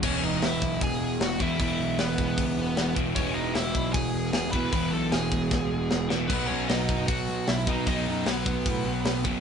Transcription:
<<
  \new Staff \with { instrumentName = "Lead electric guitar" } { \time 4/4 \key e \major \tempo 4 = 153 <cis' cis''>8 <dis' dis''>8 <e' e''>4 <gis' gis''>4 <fis' fis''>8 <e' e''>8 | <e' e''>4 <b b'>2~ <b b'>8 r8 | <cis' cis''>8 <dis' dis''>8 <e' e''>4 <gis' gis''>4 <gis' gis''>8 <b' b''>8 | <b' b''>8 <a' a''>8 <gis' gis''>2~ <gis' gis''>8 r8 |
<b b'>8 <cis' cis''>8 <dis' dis''>4 <fis' fis''>4 <e' e''>8 <dis' dis''>8 | <dis' dis''>4 <b b'>2~ <b b'>8 r8 | }
  \new Staff \with { instrumentName = "Overdriven electric guitar" } { \clef bass \time 4/4 \key e \major <e, b, e>2.~ <e, b, e>8 <e, b, e>8 | <e, b, e>2.~ <e, b, e>8 <e, b, e>8 | <e, b, e>2.~ <e, b, e>8 <e, b, e>8 | <e, b, e>2.~ <e, b, e>8 <e, b, e>8 |
<b, fis b>2.~ <b, fis b>8 <b, fis b>8 | <b, fis b>2.~ <b, fis b>8 <b, fis b>8 | }
  \new Staff \with { instrumentName = "Picked electric bass" } { \clef bass \time 4/4 \key e \major e,,8 e,,8 e,,8 b,,8 e,,8 e,,8 e,,8 e,8 | e,,8 b,,8 e,,8 e,,8 cis,8 e,,8 e,,8 e,,8 | e,,8 e,,8 e,,8 b,,8 e,,8 e,,8 e,,8 e,8 | e,,8 b,,8 e,,8 e,,8 cis,8 e,,8 e,,8 e,,8 |
b,,8 b,,8 b,,8 fis,,8 b,,8 b,,8 b,,8 b,8 | b,,8 fis,8 b,,8 b,,8 a,8 b,,8 b,,8 fis,,8 | }
  \new DrumStaff \with { instrumentName = "Drums" } \drummode { \time 4/4 <cymc bd>4 <hho sn>8 bd8 <hho bd>4 <hho sn>8 bd8 | <hho bd>4 <hho sn>8 bd8 <hho bd>4 <hho sn>8 bd8 | <hho bd>4 <hho sn>8 bd8 <hho bd>4 <hho sn>8 bd8 | <hho bd>4 <hho sn>8 bd8 <bd sn>4 sn8 sn8 |
<cymc bd>4 <hho sn>8 bd8 <hho bd>4 <hho sn>8 bd8 | <hho bd>4 <hho sn>8 bd8 <hho bd>4 <hho sn>8 bd8 | }
>>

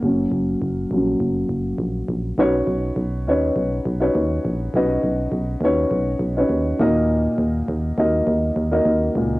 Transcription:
<<
  \new Staff \with { instrumentName = "Upright piano" } { \time 4/4 \key b \major \tempo 4 = 102 r1 | <cis' dis' fis' b' cis''>4~ <cis' dis' fis' b' cis''>16 r16 <cis' dis' fis' b' cis''>4 r16 <cis' dis' fis' b' cis''>4 r16 | <cis' dis' fis' b' dis''>4~ <cis' dis' fis' b' dis''>16 r16 <cis' dis' fis' b' cis''>4 r16 <cis' dis' fis' b' cis''>8. <ais dis' fis' ais' dis''>8~ | <ais dis' fis' ais' dis''>4 r8 <ais dis' fis' ais' dis''>4 r16 <ais dis' fis' ais' dis''>4 r16 | }
  \new Staff \with { instrumentName = "Upright piano" } { \clef bass \time 4/4 \key b \major <fis ais cis'>8 r4 <fis ais cis'>8 r2 | r1 | r2. r8 ais,8~ | ais,4 r2 r8 ais,8 | }
  \new Staff \with { instrumentName = "FM bass" } { \clef bass \time 4/4 \key b \major fis,,8 fis,,8 fis,,8 ais,,8 fis,,8 fis,,8 ais,,8 ais,,8 | b,,8 b,,8 b,,8 dis,8 b,,8 b,,8 dis,8 ais,,8 | b,,8 b,,8 b,,8 dis,8 b,,8 b,,8 dis,8 dis,8~ | dis,8 dis,8 dis,8 dis,8 dis,8 dis,8 dis,8 cis,8 | }
>>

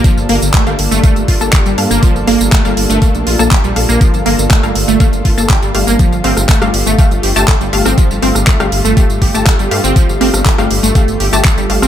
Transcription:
<<
  \new Staff \with { instrumentName = "Synth pluck" } { \time 4/4 \key g \minor \tempo 4 = 121 <bes a' f''>8 <bes a' f''>8. <bes a' f''>8. <bes a' f''>16 r8 <bes a' a''>16 r8 <bes a' f''>8~ | <bes a' f''>8 <bes a' f''>8. <bes a' f''>8. <bes a' f''>16 r8 <bes a' a''>16 r8 <bes a' f''>8~ | <bes a' f''>8 <bes a' f''>8. <bes a' f''>8. <bes a' f''>16 r8 <bes a' a''>16 r8 <a g' f''>8~ | <a g' f''>8 <a g' f''>8. <a g' f''>8. <a g' f''>16 r8 <a g' a''>16 r8 <a g' f''>8~ |
<a g' f''>8 <a g' f''>8. <a g' f''>8. <a g' f''>16 r8 <a g' a''>16 r8 <a g' f''>8~ | <a g' f''>8 <a g' f''>8. <a g' f''>8. <a g' f''>16 r8 <a g' a''>16 r8 <a g' f''>8 | }
  \new Staff \with { instrumentName = "Analog synth pad" } { \time 4/4 \key g \minor <g bes d' f' a'>1~ | <g bes d' f' a'>1~ | <g bes d' f' a'>1 | <g a>1~ |
<g a>1~ | <g a>1 | }
  \new Staff \with { instrumentName = "Synth pluck" } { \time 4/4 \key g \minor f16 r16 bes16 r16 a16 g16 r16 a16 a16 r16 f'16 r16 g'16 g16 r16 bes16 | f16 r16 bes16 r16 a16 g16 r16 a16 a16 r16 f'16 r16 g'16 g16 r16 bes16 | f16 r16 bes16 r16 a16 g16 r16 a16 a16 r16 f'16 r16 g'16 g16 r16 bes16 | f16 r16 c'16 r16 a16 g16 r16 a16 a16 r16 g'16 r16 a'16 g16 r16 c'16 |
f16 r16 c'16 r16 a16 g16 r16 a16 a16 r16 g'16 r16 a'16 g16 r16 c'16 | f16 r16 c'16 r16 a16 g16 r16 a16 a16 r16 g'16 r16 a'16 g16 r16 c'16 | }
  \new Staff \with { instrumentName = "Detuned saw bass" } { \clef bass \time 4/4 \key g \minor r16 g,,16 g,,16 g,,16 r16 g,,16 g,,16 g,,16 r16 g,,16 g,,16 g,,16 r16 g,,16 g,16 g,,16 | r16 g,,16 g,,16 g,,16 r16 g,,16 g,,16 g,,16 r16 bes,,16 bes,,16 bes,,16 r16 bes,,16 bes,,16 bes,,16 | r16 g,,16 g,,16 g,,16 r16 g,,16 g,,16 g,,16 r16 g,,16 g,,16 g,,16 r16 g,,16 g,,16 g,,16 | r16 g,,16 g,,16 g,,16 r16 g,,16 g,,16 g,,16 r16 g,,16 g,,16 g,,16 r16 g,,16 g,,16 g,,16 |
r16 g,,16 g,,16 g,,16 r16 g,,16 g,,16 g,,16 r16 g,,16 g,,16 g,,16 r16 g,,16 g,16 g,,16 | r16 g,,16 g,,16 g,,16 r16 g,,16 g,,16 g,,16 r16 g,,16 g,,16 g,,16 r16 g,,16 g,,16 g,,16 | }
  \new DrumStaff \with { instrumentName = "Drums" } \drummode { \time 4/4 <hh bd tamb>16 tamb16 hho16 <hh tamb>16 <hc hh bd tamb>16 <hh tamb>16 hho16 <hh tamb>16 <hh bd tamb>16 <hh tamb>16 <hho bd>16 <hh tamb>16 <hc hh bd tamb>16 <hh tamb>16 hho16 tamb16 | <hh bd tamb>16 tamb16 hho16 <hh tamb>16 <hc hh bd tamb>16 <hh tamb>16 hho16 <hh tamb>16 <hh bd tamb>16 <hh tamb>16 hho16 tamb16 <hc hh bd tamb>16 <hh tamb>16 hho16 <hh tamb>16 | <hh bd tamb>16 <hh tamb>16 hho16 <hh tamb>16 <hc hh bd tamb>16 <hh tamb>16 hho16 tamb16 <hh bd tamb>16 <hh tamb>16 <hho bd>16 <hh tamb>16 <hc hh bd tamb>16 <hh tamb>16 hho16 <hh tamb>16 | <hh bd tamb>16 tamb16 hho16 <hh ss tamb>16 <hc hh bd tamb>16 <hh ss tamb>16 hho16 <hh tamb>16 <hh bd tamb>16 <hh tamb>16 hho16 tamb16 <hc hh bd tamb>16 <hh tamb>16 hho16 <hh ss tamb>16 |
<hh bd tamb>16 tamb16 hho16 <hh ss tamb>16 <hc hh bd tamb>16 <hh ss tamb>16 hho16 <hh tamb>16 <hh bd tamb>16 <hh tamb>16 <hho bd>16 <hh tamb>16 <hc hh bd tamb>16 <hh tamb>16 hho16 <hh tamb>16 | <hh bd tamb>16 tamb16 hho16 <hh ss tamb>16 <hc hh bd tamb>16 <hh ss tamb>16 hho16 <hh tamb>16 <hh bd tamb>16 <hh tamb>16 hho16 <hh tamb>16 <hc hh bd tamb>16 <hh tamb>16 hho16 <ss tamb>16 | }
>>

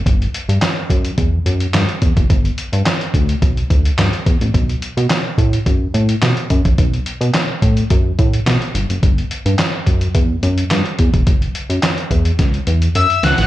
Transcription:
<<
  \new Staff \with { instrumentName = "Analog synth lead" } { \time 4/4 \key b \minor \tempo 4 = 107 r1 | r1 | r1 | r1 |
r1 | r2. e'''8 fis'''8 | }
  \new Staff \with { instrumentName = "Analog synth bass" } { \clef bass \time 4/4 \key b \minor g,,8 r16 g,16 r8 fis,8 e,8 fis,8 g,16 r16 e,16 fis,,16 | g,,8 r16 g,16 r8 d,8 b,,8 d,8 g,16 r16 e,16 a,,16 | b,,8 r16 b,16 r8 a,8 fis,8 a,8 b,16 r16 fis,16 a,,16 | b,,8 r16 b,16 r8 a,8 fis,8 a,8 b,16 r16 g,,16 fis,,16 |
g,,8 r16 g,16 r8 fis,8 e,8 fis,8 g,16 r16 e,16 e,,16 | fis,,8 r16 fis,16 r8 e,8 cis,8 e,8 fis,16 r16 cis,16 a,,16 | }
  \new DrumStaff \with { instrumentName = "Drums" } \drummode { \time 4/4 <hh bd>16 hh16 hh16 hh16 <hc hh sn>8 <hh bd>16 hh16 <hh bd>8 hh16 hh16 <hc hh sn>16 hh16 <hh bd>16 <hh bd>16 | <hh bd>16 hh16 hh16 hh16 <hc hh sn>16 hh16 <hh bd>16 hh16 <hh bd>16 hh16 <hh bd>16 hh16 <hc hh sn>16 hh16 <hh bd>16 hh16 | <hh bd>16 hh16 hh16 hh16 <hc hh sn>8 <hh bd>16 hh16 <hh bd>8 hh16 hh16 <hc hh sn>16 hh16 <hh bd>16 <hh bd>16 | <hh bd>16 hh16 hh16 hh16 <hc hh sn>8 <hh bd>16 hh16 <hh bd>8 <hh bd>16 hh16 <hc hh sn>16 hh16 hh16 hh16 |
<hh bd>16 hh16 hh16 hh16 <hc hh sn>8 <hh bd>16 hh16 <hh bd>8 hh16 hh16 <hc hh sn>16 hh16 <hh bd>16 <hh bd>16 | <hh bd>16 hh16 hh16 hh16 <hc hh sn>16 hh16 <hh bd>16 hh16 <hh bd sn>16 hh16 hh16 hh16 hh16 hh16 <hh sn>16 <hh sn>16 | }
>>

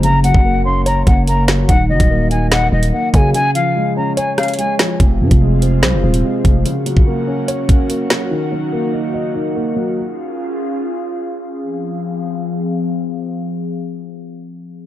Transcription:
<<
  \new Staff \with { instrumentName = "Flute" } { \time 4/4 \key f \phrygian \tempo 4 = 145 bes''8 ges''4 c'''8 bes''8 ges''8 bes''8 r8 | ges''8 ees''4 aes''8 ges''8 ees''8 ges''8 aes''8 | aes''8 f''4 bes''8 aes''8 f''8 aes''8 r8 | r1 |
r1 | r1 | r1 | r1 |
r1 | }
  \new Staff \with { instrumentName = "Analog synth pad" } { \time 4/4 \key f \phrygian << { r1 | r1 | r1 | <f' aes' f''>1 |
<ges' bes' ges''>1~ | <ges' bes' ges''>1 | <f' aes' f''>1 | <f c' aes' f''>1~ |
<f c' aes' f''>1 | } \\ { r1 | r1 | r1 | c'1 |
des'1 | ees'1 | des'1 | r1 |
r1 | } >> }
  \new Staff \with { instrumentName = "Grand piano" } { \time 4/4 \key f \phrygian des8 ges8 bes8 des'8 des''8 des'8 bes8 ges8 | ees8 ges8 bes8 ees'8 ees''8 ees'8 bes8 ges8 | des8 f8 aes8 des'8 des''8 des'8 aes8 f8 | c8 f8 aes8 c'8 c''8 c'8 aes8 f8 |
des8 ges8 bes8 des'8 des''8 des'8 bes8 ges8 | ees8 ges8 bes8 ees'8 ees''8 ees'8 bes8 ges8 | r1 | r1 |
r1 | }
  \new Staff \with { instrumentName = "808-style bass" } { \clef bass \time 4/4 \key f \phrygian ges,,8. ges,,4.~ ges,,16 ges,,4. | ees,,8 ges,,16 ees,,4.~ ees,,16 ees,,8 r8 des8 | r1 | f,,8 aes,16 f,,4~ f,,16 c,16 f,,16 ees,,8 r8 f,,8 |
r1 | r1 | r1 | r1 |
r1 | }
  \new DrumStaff \with { instrumentName = "Drums" } \drummode { \time 4/4 hh8 hh16 bd16 r4 hh8 <hh bd>8 hh8 <hh sn>8 | <hh bd>8. <hh bd>16 r8 hh8 <hh sn>8. hh16 r8 <hh bd>8 | hh8 hh8 r4 hh8 <hh ss>32 hh32 hh32 hh32 hh8 <hh sn>8 | <hh bd>8. <hh bd>16 r8 hh8 <hh sn>8. hh16 r8 <hh bd>8 |
hh8 hh16 bd16 r4 hh8 <hh bd>8 hh8 <hh sn>8 | r4 r4 r4 r4 | r4 r4 r4 r4 | r4 r4 r4 r4 |
r4 r4 r4 r4 | }
>>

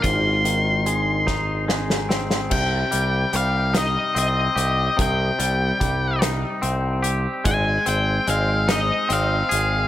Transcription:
<<
  \new Staff \with { instrumentName = "Lead electric guitar" } { \time 6/8 \key c \minor \tempo 4. = 49 c'''2 r4 | g''4 f''8 ees''8 ees''4 | g''4. r4. | aes''8 g''8 f''8 ees''8 f''4 | }
  \new Staff \with { instrumentName = "Ambient pad" } { \time 6/8 \key c \minor <c' ees' aes' ees''>2. | r2. | r2. | <aes aes' c'' ees''>2. | }
  \new Staff \with { instrumentName = "Clean electric guitar" } { \time 6/8 \key c \minor aes,8 ees8 aes8 ees'8 aes8 c'8 | c8 g8 g8 ees'8 c'8 g'8 | c8 g8 g8 ees'8 c'8 g'8 | aes8 c'8 aes8 ees'8 c'8 aes'8 | }
  \new Staff \with { instrumentName = "Fingered electric bass" } { \clef bass \time 6/8 \key c \minor aes,,2. | c,8 c,8 c,4 c,8 c,8 | c,8 c,8 c,4 c,4 | aes,,8 aes,,8 aes,,4 aes,,8 aes,,8 | }
  \new DrumStaff \with { instrumentName = "Drums" } \drummode { \time 6/8 <hh bd>8 hh8 hh8 <bd sn>8 sn16 sn16 sn16 sn16 | <cymc bd>8 hh8 hh8 <hh sn>8 hh8 hh8 | <hh bd>8 hh8 <hh bd>8 <hh sn>8 hh8 hh8 | <hh bd>8 hh8 hh8 <hh sn>8 hh8 hh8 | }
>>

